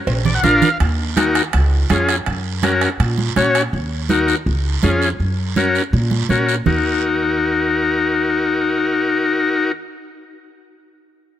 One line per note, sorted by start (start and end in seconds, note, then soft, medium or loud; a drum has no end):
0.07 0.36 A#1 medium
0.07 cowbell medium
0.07 long guiro medium
0.25 0.34 D5 medium
0.25 low conga medium
0.35 0.43 F#5 medium
0.43 0.58 A#1 medium
0.43 0.69 D4 medium
0.43 0.69 F4 medium
0.43 0.69 A#4 loud
0.43 0.78 F5 medium
0.43 low conga medium
0.43 short guiro medium
0.62 low conga medium
0.62 short guiro medium
0.80 1.39 D#2 medium
0.80 high timbale medium
0.80 long guiro medium
1.16 1.42 D#4 medium
1.16 1.42 F#4 medium
1.16 1.43 A#4 medium
1.16 high conga medium
1.16 high timbale medium
1.16 short guiro medium
1.35 high timbale medium
1.35 short guiro medium
1.53 1.83 C#2 loud
1.53 high timbale medium
1.53 long guiro medium
1.90 2.19 F2 medium
1.90 2.16 C#4 medium
1.90 2.16 F4 medium
1.90 2.16 G#4 medium
1.90 high conga medium
1.90 high timbale medium
1.90 short guiro medium
2.09 high timbale medium
2.09 short guiro medium
2.26 2.85 F#2 medium
2.26 high timbale medium
2.26 long guiro medium
2.63 2.89 C#4 medium
2.63 2.89 F#4 medium
2.63 2.89 A#4 medium
2.63 high conga medium
2.63 high timbale medium
2.63 short guiro medium
2.81 high timbale medium
2.81 short guiro medium
3.00 3.29 A#2 medium
3.00 high timbale medium
3.00 long guiro medium
3.18 high conga medium
3.36 3.66 A#2 medium
3.36 3.62 C#4 medium
3.36 3.62 F#4 medium
3.36 3.62 C#5 medium
3.36 high conga medium
3.36 high timbale medium
3.36 short guiro medium
3.55 high timbale medium
3.55 short guiro medium
3.73 4.32 D#2 medium
3.73 long guiro medium
4.09 4.35 D#4 medium
4.09 4.36 F#4 medium
4.09 4.36 A#4 medium
4.09 high conga medium
4.09 short guiro medium
4.28 short guiro medium
4.46 4.76 C#2 medium
4.46 long guiro medium
4.83 5.13 F2 medium
4.83 5.09 C#4 medium
4.83 5.09 F4 medium
4.83 5.09 G#4 medium
4.83 high conga medium
4.83 short guiro medium
5.02 short guiro medium
5.20 5.78 F#2 medium
5.20 long guiro medium
5.56 5.82 C#4 medium
5.56 5.82 F#4 medium
5.56 5.83 A#4 medium
5.56 high conga medium
5.56 short guiro medium
5.75 short guiro medium
5.93 6.22 A#2 loud
5.93 long guiro medium
6.11 high conga medium
6.29 6.59 A#2 medium
6.29 6.55 C#4 medium
6.29 6.56 F#4 medium
6.29 6.56 A#4 medium
6.29 high conga medium
6.29 short guiro medium
6.49 short guiro medium
6.66 9.71 D#2 medium
6.66 9.72 D#4 medium
6.66 9.72 F#4 medium
6.66 9.72 A#4 medium
6.66 low conga medium
6.66 long guiro medium